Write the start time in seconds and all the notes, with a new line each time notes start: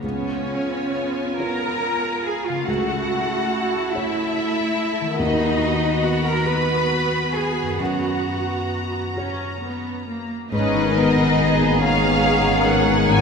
Already playing: C#3 B3 C#4 F4
0.03 C#2 B3 C#4 F4 C#5 G#5
1.40 F4 A#4 C#5 A#5
2.25 G#4 G#5
2.46 C#3 F4 F5
2.54 C#4
2.58 E4
2.62 A4
2.67 C#2 A3 E4 F#4 F#5 A5
3.94 E4 C#5 E5
5.01 D#3
5.05 B3
5.10 F#4
5.19 D#2 B3 D#4 F#4 D#5 B5
6.03 F#4 F#5
6.24 A#4 A#5
6.44 F#4 B4 B5
7.32 G#4 G#5
7.61 F#2
7.65 C#4
7.69 F#4
7.74 C#5
7.78 F#2 F#4 F#5 A#5
9.17 C#4 F#4 C#5
9.63 B3
10.09 A#3
10.52 G#1 G#2 B3 C#4 D#4 G#4 B4 D#5 A#5
10.74 D#3 D#4
10.96 B3 A#4
11.18 D#4
11.39 B3 G#4
11.61 A#3 D#4
11.82 G#3 C#4 D#4 G#4 C#5 F5
12.04 B3 D#4
12.25 B3 B4
12.46 D#3 D#4
12.67 B3 F#5
12.88 D#3 B4
13.09 G#2 B3 D#4 F4 G#5